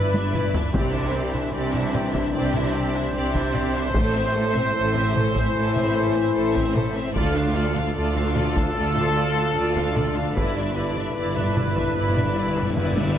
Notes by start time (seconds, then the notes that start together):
Already playing: G1 G2 E3 D4 E4 B4 D5
0.14 D4 D5 E5, taiko high
0.34 E4 B4 D5, taiko mid
0.54 D4 D5 E5, taiko low
0.73 C2 C3 C4 D4 G4 C5 D5, taiko
0.93 D4 E4 E5
1.14 C4 G4 D5
1.33 D4 E4 E5, taiko mid
1.53 C2 C3 C4 G4 D5
1.73 D4 E4 E5, taiko mid
1.94 C4 G4 D5, taiko mid
2.13 D4 E4 E5, taiko
2.33 C2 C3 C4 G4 D5
2.53 D4 E4 E5, taiko mid
2.74 C4 G4 D5
2.94 D4 E4 E5
3.14 C2 C3 C4 G4 D5
3.34 D4 E4 E5, taiko
3.54 C4 G4 D5, taiko mid
3.74 D4 E4 E5
3.93 A1 A2 E3 A3 E4 A4 C5, taiko
4.13 C4 C5 E5
4.33 A3 C5
4.38 A4
4.52 C4 C5 E5, taiko mid
4.74 A1 A2 A3 A4 C5
4.93 C4 E5, taiko mid
4.98 C5
5.14 A3 A4 C5, taiko mid
5.34 C4 C5 E5, taiko
5.54 A1 A2 A3 A4 C5
5.73 C4 C5 E5, taiko mid
5.94 A3 A4 C5
6.13 C4 C5 E5
6.33 A1 A2 A3 A4 C5
6.54 C4 C5 E5, taiko
6.73 A3 A4 C5, taiko mid
6.94 C4 C5 E5
7.14 D2 D3 F4 A4 D5, taiko
7.34 D4 F4 F5
7.55 F4 A4 D5
7.75 D4 F4 F5, taiko mid
7.95 D2 F4 A4 D5
8.16 D4 F4 F5, taiko mid
8.35 F4 A4 D5, taiko mid
8.55 D4 F4 F5, taiko
8.74 D2 F4 A4 D5
8.94 D4 F4 F5, taiko mid
9.15 F4 A4 D5
9.34 D4 F4 F5
9.55 D2 F4 A4 D5
9.74 D4 F4 F5, taiko
9.95 F4 A4 D5, taiko mid
10.15 D4 F4 F5
10.34 G1 G2 E4 B4 D5, taiko
10.45 G2
10.52 G2 D5
10.56 D4 E5
10.67 G2
10.74 G2 E4 B4 D5
10.81 G2
10.89 G2
10.94 G2 D4 D5 E5, taiko mid
11.04 G2
11.11 G2 B4
11.16 G1 G2 E4 D5
11.26 G2
11.34 G2 D4 D5 E5, taiko mid
11.42 G2
11.49 G2
11.56 G2 E4 B4 D5, taiko mid
11.64 G2
11.71 G2 D5
11.76 G2 D4 E5, taiko
11.87 G2
11.94 G1 G2 E4 B4 D5
12.02 G2
12.09 G2
12.17 G2 D4 D5 E5, taiko mid
12.25 G2
12.32 G2
12.37 G2 E4 B4 D5
12.48 G2
12.55 G2 D4 D5 E5, taiko rim
12.62 G2
12.70 G2
12.77 G1 G2 E4 B4 D5, taiko low-mid
12.85 G2
12.93 G2
12.97 G2 D4 D5 E5, taiko high
13.07 G2
13.14 G2